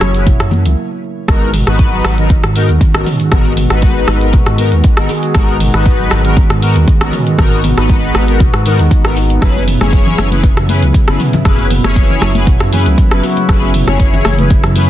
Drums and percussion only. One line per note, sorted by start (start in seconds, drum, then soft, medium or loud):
0.01 cross-stick medium
0.01 muted conga medium
0.01 shaker medium
0.14 closed hi-hat soft
0.14 shaker medium
0.26 kick loud
0.26 closed hi-hat medium
0.26 mid tom medium
0.26 muted conga soft
0.26 high conga medium
0.26 shaker soft
0.40 cross-stick medium
0.40 closed hi-hat soft
0.40 shaker medium
0.51 muted conga medium
0.51 high conga medium
0.51 low conga medium
0.51 shaker medium
0.66 closed hi-hat soft
0.66 low conga medium
0.66 shaker soft
1.28 kick loud
1.28 cross-stick loud
1.28 closed hi-hat medium
1.28 shaker medium
1.43 shaker medium
1.54 mid tom medium
1.54 open hi-hat medium
1.54 shaker medium
1.67 cross-stick medium
1.67 closed hi-hat soft
1.67 shaker loud
1.79 kick loud
1.79 closed hi-hat medium
1.79 shaker medium
1.93 shaker medium
2.05 cross-stick medium
2.05 open hi-hat medium
2.05 shaker loud
2.18 closed hi-hat soft
2.18 shaker medium
2.30 kick loud
2.30 closed hi-hat medium
2.30 shaker medium
2.44 cross-stick medium
2.44 closed hi-hat soft
2.44 shaker medium
2.56 open hi-hat medium
2.56 shaker loud
2.69 closed hi-hat soft
2.69 shaker medium
2.81 kick loud
2.81 closed hi-hat medium
2.81 shaker medium
2.94 cross-stick loud
2.94 shaker medium
3.06 mid tom medium
3.06 open hi-hat medium
3.06 shaker loud
3.20 closed hi-hat soft
3.20 shaker medium
3.32 kick loud
3.32 cross-stick loud
3.32 closed hi-hat medium
3.32 mid tom medium
3.32 shaker loud
3.45 closed hi-hat soft
3.45 shaker medium
3.57 mid tom medium
3.57 open hi-hat medium
3.57 shaker medium
3.70 cross-stick medium
3.70 closed hi-hat soft
3.70 shaker loud
3.82 kick loud
3.82 closed hi-hat medium
3.82 shaker medium
3.96 shaker medium
4.08 cross-stick loud
4.08 open hi-hat medium
4.08 shaker medium
4.21 closed hi-hat soft
4.21 shaker medium
4.33 kick loud
4.33 closed hi-hat medium
4.33 mid tom medium
4.33 shaker medium
4.46 cross-stick medium
4.46 closed hi-hat soft
4.46 shaker medium
4.58 open hi-hat medium
4.58 shaker loud
4.72 closed hi-hat soft
4.72 shaker medium
4.84 kick loud
4.84 closed hi-hat medium
4.84 shaker loud
4.97 cross-stick loud
4.97 shaker medium
5.09 open hi-hat medium
5.09 shaker loud
5.23 closed hi-hat soft
5.23 shaker medium
5.35 kick loud
5.35 cross-stick loud
5.35 closed hi-hat medium
5.35 shaker loud
5.49 shaker medium
5.60 mid tom medium
5.60 open hi-hat medium
5.60 shaker medium
5.74 cross-stick medium
5.74 closed hi-hat soft
5.74 shaker loud
5.86 kick loud
5.86 closed hi-hat medium
5.86 shaker medium
6.00 shaker medium
6.11 cross-stick loud
6.11 open hi-hat medium
6.11 shaker loud
6.25 closed hi-hat soft
6.25 shaker medium
6.37 kick loud
6.37 closed hi-hat medium
6.37 shaker medium
6.50 cross-stick medium
6.50 closed hi-hat soft
6.50 shaker medium
6.62 open hi-hat medium
6.62 shaker loud
6.76 closed hi-hat soft
6.76 shaker medium
6.88 kick loud
6.88 closed hi-hat medium
6.88 shaker loud
7.01 cross-stick loud
7.01 shaker medium
7.13 mid tom medium
7.13 open hi-hat medium
7.13 shaker loud
7.27 closed hi-hat soft
7.27 shaker medium
7.38 kick loud
7.38 cross-stick medium
7.38 closed hi-hat medium
7.38 mid tom medium
7.38 shaker loud
7.52 closed hi-hat soft
7.52 shaker medium
7.64 mid tom medium
7.64 open hi-hat medium
7.64 shaker medium
7.78 cross-stick medium
7.78 closed hi-hat soft
7.78 shaker loud
7.89 kick loud
7.89 closed hi-hat medium
7.89 shaker medium
8.04 shaker medium
8.15 cross-stick medium
8.15 open hi-hat medium
8.15 shaker loud
8.28 closed hi-hat soft
8.28 shaker medium
8.40 kick loud
8.40 closed hi-hat medium
8.40 mid tom medium
8.40 shaker medium
8.54 cross-stick medium
8.54 closed hi-hat soft
8.54 shaker medium
8.66 open hi-hat medium
8.66 shaker medium
8.79 closed hi-hat soft
8.79 shaker medium
8.91 kick loud
8.91 closed hi-hat medium
8.91 shaker medium
9.05 cross-stick medium
9.05 shaker medium
9.17 open hi-hat medium
9.17 shaker loud
9.30 closed hi-hat soft
9.30 shaker medium
9.42 kick loud
9.42 cross-stick medium
9.42 closed hi-hat medium
9.42 shaker loud
9.56 muted conga medium
9.56 shaker medium
9.68 mid tom medium
9.68 open hi-hat medium
9.68 shaker medium
9.81 cross-stick medium
9.81 closed hi-hat soft
9.81 muted conga soft
9.81 high conga medium
9.81 shaker medium
9.93 kick loud
9.93 closed hi-hat medium
9.93 shaker medium
10.06 low conga medium
10.06 shaker medium
10.18 cross-stick medium
10.18 open hi-hat medium
10.18 muted conga medium
10.18 high conga medium
10.18 shaker medium
10.31 closed hi-hat soft
10.31 high conga loud
10.31 shaker medium
10.43 kick loud
10.43 closed hi-hat medium
10.43 muted conga soft
10.43 high conga medium
10.43 shaker medium
10.57 cross-stick medium
10.57 closed hi-hat soft
10.57 shaker medium
10.69 open hi-hat medium
10.69 muted conga medium
10.69 high conga medium
10.69 shaker medium
10.82 closed hi-hat soft
10.82 shaker medium
10.94 kick loud
10.94 closed hi-hat medium
10.94 muted conga soft
10.94 shaker medium
11.08 cross-stick medium
11.08 shaker medium
11.20 mid tom loud
11.20 open hi-hat medium
11.20 shaker medium
11.33 closed hi-hat soft
11.33 muted conga medium
11.33 low conga loud
11.33 shaker medium
11.45 kick loud
11.45 cross-stick medium
11.45 closed hi-hat medium
11.45 mid tom medium
11.45 shaker loud
11.59 closed hi-hat soft
11.59 muted conga medium
11.59 shaker medium
11.71 mid tom medium
11.71 open hi-hat medium
11.71 shaker medium
11.84 cross-stick medium
11.84 closed hi-hat soft
11.84 muted conga soft
11.84 high conga medium
11.84 shaker medium
11.96 kick loud
11.96 closed hi-hat medium
11.96 shaker medium
12.10 low conga loud
12.10 shaker medium
12.22 cross-stick medium
12.22 open hi-hat medium
12.22 muted conga medium
12.22 high conga medium
12.22 shaker medium
12.35 closed hi-hat soft
12.35 high conga loud
12.35 shaker medium
12.46 kick loud
12.46 closed hi-hat medium
12.46 mid tom medium
12.46 muted conga soft
12.46 shaker soft
12.60 cross-stick medium
12.60 closed hi-hat soft
12.60 shaker medium
12.73 open hi-hat medium
12.73 muted conga medium
12.73 low conga medium
12.73 shaker medium
12.86 closed hi-hat soft
12.86 shaker soft
12.98 kick loud
12.98 closed hi-hat medium
12.98 muted conga soft
12.98 shaker medium
13.11 cross-stick medium
13.11 shaker medium
13.23 open hi-hat medium
13.23 shaker medium
13.37 closed hi-hat soft
13.37 muted conga medium
13.37 shaker soft
13.49 kick loud
13.49 cross-stick medium
13.49 closed hi-hat medium
13.49 shaker medium
13.63 muted conga medium
13.63 shaker medium
13.74 mid tom medium
13.74 open hi-hat medium
13.74 shaker soft
13.87 cross-stick medium
13.87 closed hi-hat soft
13.87 muted conga soft
13.87 high conga medium
13.87 shaker medium
14.00 kick loud
14.00 closed hi-hat medium
14.00 shaker soft
14.14 low conga loud
14.14 shaker medium
14.25 cross-stick medium
14.25 open hi-hat medium
14.25 muted conga medium
14.25 high conga medium
14.25 shaker medium
14.39 closed hi-hat soft
14.39 high conga loud
14.39 shaker medium
14.50 kick loud
14.50 closed hi-hat medium
14.50 muted conga soft
14.50 high conga medium
14.50 shaker soft
14.64 cross-stick medium
14.64 closed hi-hat soft
14.64 shaker medium
14.76 open hi-hat medium
14.76 muted conga soft
14.76 high conga medium
14.76 shaker medium